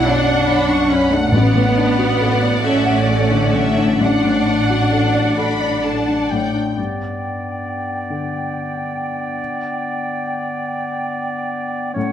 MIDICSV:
0, 0, Header, 1, 11, 480
1, 0, Start_track
1, 0, Tempo, 846262
1, 752, Time_signature, 6, 3, 24, 8
1, 752, Tempo, 881057
1, 1712, Tempo, 923077
1, 3632, Tempo, 887574
1, 4112, Tempo, 858369
1, 6604, End_track
2, 0, Start_track
2, 0, Title_t, "Flute section"
2, 0, Program_c, 0, 73
2, 3634, Note_on_c, 0, 79, 34
2, 6490, Note_off_c, 0, 79, 0
2, 6509, Note_on_c, 0, 78, 48
2, 6604, Note_off_c, 0, 78, 0
2, 6604, End_track
3, 0, Start_track
3, 0, Title_t, "Violin section"
3, 0, Program_c, 1, 48
3, 32, Note_on_c, 1, 74, 64
3, 150, Note_on_c, 1, 78, 64
3, 151, Note_off_c, 1, 74, 0
3, 270, Note_off_c, 1, 78, 0
3, 275, Note_on_c, 1, 83, 63
3, 392, Note_off_c, 1, 83, 0
3, 395, Note_on_c, 1, 85, 58
3, 513, Note_off_c, 1, 85, 0
3, 516, Note_on_c, 1, 83, 65
3, 633, Note_off_c, 1, 83, 0
3, 636, Note_on_c, 1, 78, 61
3, 744, Note_off_c, 1, 78, 0
3, 751, Note_on_c, 1, 78, 66
3, 753, Note_on_c, 1, 74, 66
3, 2169, Note_off_c, 1, 78, 0
3, 2170, Note_off_c, 1, 74, 0
3, 2190, Note_on_c, 1, 78, 63
3, 2192, Note_on_c, 1, 74, 63
3, 3501, Note_off_c, 1, 78, 0
3, 3502, Note_off_c, 1, 74, 0
3, 6604, End_track
4, 0, Start_track
4, 0, Title_t, "Violin section"
4, 0, Program_c, 2, 48
4, 0, Note_on_c, 2, 78, 88
4, 1466, Note_on_c, 2, 76, 66
4, 1471, Note_off_c, 2, 78, 0
4, 1706, Note_off_c, 2, 76, 0
4, 1713, Note_on_c, 2, 74, 61
4, 1943, Note_on_c, 2, 76, 70
4, 1945, Note_off_c, 2, 74, 0
4, 2182, Note_on_c, 2, 78, 71
4, 2187, Note_off_c, 2, 76, 0
4, 2855, Note_off_c, 2, 78, 0
4, 2907, Note_on_c, 2, 83, 73
4, 3130, Note_off_c, 2, 83, 0
4, 3142, Note_on_c, 2, 81, 58
4, 3385, Note_on_c, 2, 79, 65
4, 3389, Note_off_c, 2, 81, 0
4, 3628, Note_off_c, 2, 79, 0
4, 6604, End_track
5, 0, Start_track
5, 0, Title_t, "Oboe"
5, 0, Program_c, 3, 68
5, 3630, Note_on_c, 3, 74, 33
5, 6488, Note_off_c, 3, 74, 0
5, 6501, Note_on_c, 3, 73, 50
5, 6604, Note_off_c, 3, 73, 0
5, 6604, End_track
6, 0, Start_track
6, 0, Title_t, "Felt piano"
6, 0, Program_c, 4, 0
6, 0, Control_c, 4, 64, 127
6, 0, Note_on_c, 4, 35, 67
6, 0, Note_on_c, 4, 42, 50
6, 0, Note_on_c, 4, 62, 54
6, 0, Note_on_c, 4, 66, 55
6, 0, Note_on_c, 4, 73, 56
6, 0, Note_on_c, 4, 74, 52
6, 35, Note_off_c, 4, 73, 0
6, 35, Note_on_c, 4, 73, 53
6, 102, Note_off_c, 4, 74, 0
6, 159, Note_on_c, 4, 74, 55
6, 224, Note_off_c, 4, 73, 0
6, 275, Note_on_c, 4, 73, 55
6, 346, Note_off_c, 4, 74, 0
6, 388, Note_off_c, 4, 62, 0
6, 388, Note_on_c, 4, 62, 47
6, 464, Note_off_c, 4, 73, 0
6, 514, Note_off_c, 4, 42, 0
6, 514, Note_on_c, 4, 42, 49
6, 581, Note_off_c, 4, 62, 0
6, 638, Note_on_c, 4, 62, 49
6, 705, Note_off_c, 4, 42, 0
6, 726, Note_off_c, 4, 35, 0
6, 756, Note_off_c, 4, 62, 0
6, 759, Note_on_c, 4, 33, 62
6, 762, Control_c, 4, 64, 0
6, 767, Note_off_c, 4, 66, 0
6, 843, Control_c, 4, 64, 127
6, 872, Note_on_c, 4, 45, 46
6, 996, Note_on_c, 4, 62, 51
6, 1062, Note_off_c, 4, 45, 0
6, 1112, Note_on_c, 4, 66, 53
6, 1184, Note_off_c, 4, 62, 0
6, 1229, Note_on_c, 4, 69, 51
6, 1302, Note_off_c, 4, 66, 0
6, 1348, Note_on_c, 4, 74, 49
6, 1420, Note_off_c, 4, 69, 0
6, 1470, Note_on_c, 4, 69, 52
6, 1540, Note_off_c, 4, 74, 0
6, 1589, Note_on_c, 4, 78, 51
6, 1663, Note_off_c, 4, 69, 0
6, 1711, Note_on_c, 4, 69, 49
6, 1782, Note_off_c, 4, 78, 0
6, 1828, Note_on_c, 4, 50, 45
6, 1901, Note_off_c, 4, 69, 0
6, 1951, Note_on_c, 4, 45, 44
6, 2020, Note_off_c, 4, 50, 0
6, 2070, Note_on_c, 4, 62, 45
6, 2143, Note_off_c, 4, 45, 0
6, 2173, Note_off_c, 4, 33, 0
6, 2189, Note_on_c, 4, 33, 61
6, 2200, Control_c, 4, 64, 0
6, 2263, Note_off_c, 4, 62, 0
6, 2308, Control_c, 4, 64, 127
6, 2311, Note_on_c, 4, 45, 40
6, 2426, Note_on_c, 4, 62, 45
6, 2504, Note_off_c, 4, 45, 0
6, 2550, Note_on_c, 4, 66, 47
6, 2620, Note_off_c, 4, 62, 0
6, 2667, Note_on_c, 4, 69, 49
6, 2740, Note_off_c, 4, 66, 0
6, 2782, Note_on_c, 4, 74, 48
6, 2858, Note_off_c, 4, 69, 0
6, 2903, Note_on_c, 4, 69, 48
6, 2975, Note_off_c, 4, 74, 0
6, 3022, Note_on_c, 4, 74, 48
6, 3097, Note_off_c, 4, 69, 0
6, 3144, Note_on_c, 4, 69, 47
6, 3218, Note_off_c, 4, 74, 0
6, 3268, Note_on_c, 4, 62, 43
6, 3341, Note_off_c, 4, 69, 0
6, 3393, Note_on_c, 4, 45, 43
6, 3464, Note_off_c, 4, 62, 0
6, 3509, Note_on_c, 4, 62, 44
6, 3585, Note_off_c, 4, 45, 0
6, 3610, Note_off_c, 4, 33, 0
6, 3625, Note_on_c, 4, 43, 33
6, 3629, Note_off_c, 4, 62, 0
6, 3641, Control_c, 4, 64, 0
6, 3746, Control_c, 4, 64, 127
6, 4354, Note_on_c, 4, 50, 27
6, 5047, Note_off_c, 4, 43, 0
6, 5083, Control_c, 4, 64, 0
6, 5184, Control_c, 4, 64, 127
6, 6510, Note_off_c, 4, 50, 0
6, 6513, Note_on_c, 4, 45, 47
6, 6520, Control_c, 4, 64, 0
6, 6604, Note_off_c, 4, 45, 0
6, 6604, End_track
7, 0, Start_track
7, 0, Title_t, "Cello section"
7, 0, Program_c, 5, 48
7, 37, Note_on_c, 5, 62, 92
7, 511, Note_on_c, 5, 61, 90
7, 512, Note_off_c, 5, 62, 0
7, 631, Note_off_c, 5, 61, 0
7, 639, Note_on_c, 5, 57, 80
7, 756, Note_off_c, 5, 57, 0
7, 756, Note_on_c, 5, 59, 94
7, 1470, Note_off_c, 5, 59, 0
7, 1471, Note_on_c, 5, 61, 83
7, 2177, Note_off_c, 5, 61, 0
7, 2190, Note_on_c, 5, 62, 78
7, 3371, Note_off_c, 5, 62, 0
7, 6604, End_track
8, 0, Start_track
8, 0, Title_t, "Clarinet"
8, 0, Program_c, 6, 71
8, 3619, Note_on_c, 6, 59, 36
8, 6482, Note_off_c, 6, 59, 0
8, 6508, Note_on_c, 6, 61, 54
8, 6604, Note_off_c, 6, 61, 0
8, 6604, End_track
9, 0, Start_track
9, 0, Title_t, "Viola section"
9, 0, Program_c, 7, 48
9, 37, Note_on_c, 7, 62, 87
9, 512, Note_off_c, 7, 62, 0
9, 514, Note_on_c, 7, 61, 73
9, 632, Note_off_c, 7, 61, 0
9, 640, Note_on_c, 7, 57, 64
9, 757, Note_off_c, 7, 57, 0
9, 760, Note_on_c, 7, 59, 86
9, 1457, Note_off_c, 7, 59, 0
9, 1470, Note_on_c, 7, 57, 81
9, 2191, Note_off_c, 7, 57, 0
9, 2193, Note_on_c, 7, 62, 67
9, 3393, Note_off_c, 7, 62, 0
9, 6604, End_track
10, 0, Start_track
10, 0, Title_t, "Timpani"
10, 0, Program_c, 8, 47
10, 748, Note_on_c, 8, 45, 80
10, 1444, Note_off_c, 8, 45, 0
10, 6604, End_track
11, 0, Start_track
11, 0, Title_t, "Double bass section"
11, 0, Program_c, 10, 48
11, 0, Note_on_c, 10, 35, 64
11, 732, Note_off_c, 10, 35, 0
11, 753, Note_on_c, 10, 33, 64
11, 3502, Note_off_c, 10, 33, 0
11, 6604, End_track
0, 0, End_of_file